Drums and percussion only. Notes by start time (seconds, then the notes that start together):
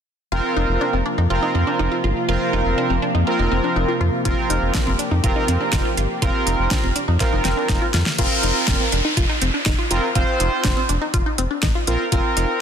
4.25 kick, closed hi-hat
4.50 closed hi-hat
4.75 kick, snare, closed hi-hat
4.99 closed hi-hat
5.24 kick, closed hi-hat
5.48 closed hi-hat
5.73 kick, snare, closed hi-hat
5.97 closed hi-hat
6.22 kick, closed hi-hat
6.47 closed hi-hat
6.71 kick, snare, closed hi-hat
6.96 closed hi-hat
7.20 kick, snare, closed hi-hat
7.45 snare, closed hi-hat
7.69 kick, snare, closed hi-hat
7.94 snare, closed hi-hat
8.06 snare
8.18 kick, closed hi-hat, crash
8.43 closed hi-hat
8.68 kick, snare, closed hi-hat
8.92 closed hi-hat
9.17 kick, closed hi-hat
9.42 closed hi-hat
9.66 kick, snare, closed hi-hat
9.91 closed hi-hat
10.15 kick, closed hi-hat
10.40 closed hi-hat
10.64 kick, snare, closed hi-hat
10.89 closed hi-hat
11.14 kick, closed hi-hat
11.38 closed hi-hat
11.63 kick, snare, closed hi-hat
11.87 closed hi-hat
12.12 kick, closed hi-hat
12.37 closed hi-hat